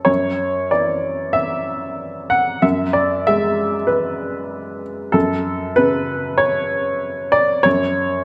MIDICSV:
0, 0, Header, 1, 2, 480
1, 0, Start_track
1, 0, Tempo, 638298
1, 62, Time_signature, 4, 2, 24, 8
1, 1981, Tempo, 628931
1, 6259, End_track
2, 0, Start_track
2, 0, Title_t, "Upright piano"
2, 0, Program_c, 0, 0
2, 0, Control_c, 0, 64, 127
2, 0, Note_on_c, 0, 57, 31
2, 0, Note_on_c, 0, 69, 57
2, 0, Note_on_c, 0, 73, 64
2, 35, Note_off_c, 0, 73, 0
2, 35, Note_on_c, 0, 73, 65
2, 45, Note_on_c, 0, 42, 49
2, 76, Control_c, 0, 64, 0
2, 80, Note_off_c, 0, 57, 0
2, 80, Note_off_c, 0, 69, 0
2, 208, Control_c, 0, 64, 127
2, 532, Note_off_c, 0, 73, 0
2, 534, Note_on_c, 0, 74, 58
2, 537, Note_on_c, 0, 52, 38
2, 1000, Note_on_c, 0, 76, 72
2, 1023, Note_off_c, 0, 74, 0
2, 1729, Note_off_c, 0, 76, 0
2, 1729, Note_on_c, 0, 78, 70
2, 1942, Note_off_c, 0, 42, 0
2, 1972, Note_on_c, 0, 76, 70
2, 1974, Note_off_c, 0, 78, 0
2, 1974, Note_on_c, 0, 42, 57
2, 1995, Control_c, 0, 64, 0
2, 2138, Control_c, 0, 64, 127
2, 2209, Note_on_c, 0, 74, 61
2, 2218, Note_off_c, 0, 76, 0
2, 2455, Note_off_c, 0, 74, 0
2, 2465, Note_on_c, 0, 76, 80
2, 2468, Note_on_c, 0, 56, 44
2, 2840, Note_off_c, 0, 52, 0
2, 2924, Note_on_c, 0, 71, 63
2, 2941, Note_off_c, 0, 76, 0
2, 3653, Note_off_c, 0, 71, 0
2, 3867, Note_off_c, 0, 42, 0
2, 3880, Note_on_c, 0, 69, 77
2, 3891, Note_on_c, 0, 42, 55
2, 3904, Note_off_c, 0, 56, 0
2, 3913, Control_c, 0, 64, 0
2, 4025, Control_c, 0, 64, 127
2, 4366, Note_on_c, 0, 71, 80
2, 4367, Note_off_c, 0, 69, 0
2, 4380, Note_on_c, 0, 49, 43
2, 4836, Note_on_c, 0, 73, 70
2, 4853, Note_off_c, 0, 71, 0
2, 5556, Note_on_c, 0, 74, 74
2, 5560, Note_off_c, 0, 73, 0
2, 5777, Note_off_c, 0, 42, 0
2, 5795, Note_on_c, 0, 73, 80
2, 5805, Note_off_c, 0, 74, 0
2, 5812, Note_on_c, 0, 42, 54
2, 5827, Control_c, 0, 64, 0
2, 5931, Control_c, 0, 64, 127
2, 6259, Note_off_c, 0, 42, 0
2, 6259, Note_off_c, 0, 49, 0
2, 6259, Note_off_c, 0, 73, 0
2, 6259, End_track
0, 0, End_of_file